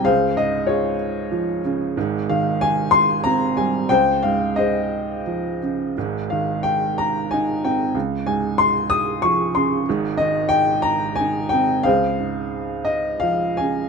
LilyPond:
<<
  \new Staff \with { instrumentName = "Upright piano" } { \time 3/4 \key des \lydian \tempo 4 = 91 << { f''8 ees''8 des''4 r4 | r8 f''8 aes''8 c'''8 bes''8 aes''8 | g''8 f''8 ees''4 r4 | r8 f''8 g''8 bes''8 aes''8 g''8 |
r8 aes''8 c'''8 ees'''8 des'''8 c'''8 | r8 ees''8 g''8 bes''8 aes''8 g''8 | f''4. ees''8 f''8 aes''8 | } \\ { <aes' c''>4 <f' aes'>4. r8 | r2. | c''4 <aes' c''>4. r8 | r2. |
r2. | r2. | <aes' c''>2~ <aes' c''>8 r8 | } >> }
  \new Staff \with { instrumentName = "Upright piano" } { \clef bass \time 3/4 \key des \lydian des,8 aes,4. f8 des8 | <aes,, aes,>8 ees4. c'8 g8 | des,8 aes,4. f8 des8 | <aes,, aes,>8 ees4. ees'8 c'8 |
des,8 aes,4. f8 des8 | <aes,, aes,>8 ees4. ees'8 c'8 | des,8 aes,4. f8 des8 | }
>>